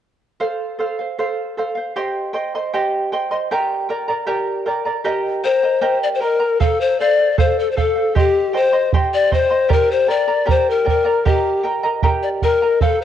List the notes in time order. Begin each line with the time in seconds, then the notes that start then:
0.40 A4 C5 F5
0.79 A4 C5 F5
0.99 C5 F5
1.18 A4 C5 F5
1.57 A4 C5 F5
1.75 C5 F5
1.96 G4 C5 D#5 G5 C6
2.33 C5 D#5 G5 C6
2.55 C5 D#5 C6
2.74 G4 C5 D#5 G5 C6
3.12 C5 D#5 G5 C6
3.31 C5 D#5 C6
3.51 G4 A#4 D5 G5 A#5
3.89 A#4 D5 G5 A#5
4.08 A#4 D5 A#5
4.27 G4 A#4 D5 G5 A#5
4.66 A#4 D5 G5 A#5
4.85 A#4 D5 A#5
5.04 G4 A#4 D#5 G5 A#5
5.44 A#4 C5 D#5 G5 A#5
5.63 A#4 D#5 A#5
5.81 G4 A#4 D#5 G5 A#5
6.03 D5
6.15 C5
6.20 A#4 D#5 G5 A#5
6.40 A#4 D#5 A#5
6.60 A4 C5 F5, bombo low
6.81 C5
7.00 A4 C5 D5 F5
7.19 C5 F5
7.38 A4 C5 F5, bombo low
7.59 A4
7.72 C5
7.76 A4 C5 F5, bombo low
7.95 C5 F5
8.15 G4 C5 D#5 G5 C6, bombo low
8.53 C5 D#5 G5 C6
8.73 C5 D#5 C6
8.93 G4 C5 D#5 G5 C6, bombo low
9.14 D5
9.31 C5 D#5 G5 C6, bombo low
9.50 C5 D#5 C6
9.69 G4 A#4 D5 G5 A#5, bombo low
9.91 C5
10.07 A#4 D5 G5 A#5
10.28 A#4 D5 A#5
10.46 G4 A#4 D5 G5 A#5, bombo low
10.50 C5
10.70 A#4
10.85 A#4 D5 G5 A#5, bombo low
10.89 A#4
11.05 A#4 D5 A#5
11.25 G4 A#4 D#5 G5 A#5, bombo low
11.63 A#4 D#5 G5 A#5
11.83 A#4 D#5 A#5
12.03 G4 A#4 D#5 G5 A#5, bombo low
12.23 D5
12.42 A#4 D#5 G5 A#5, bombo low
12.62 A#4 D#5 A#5
12.81 A4 C5 F5, bombo low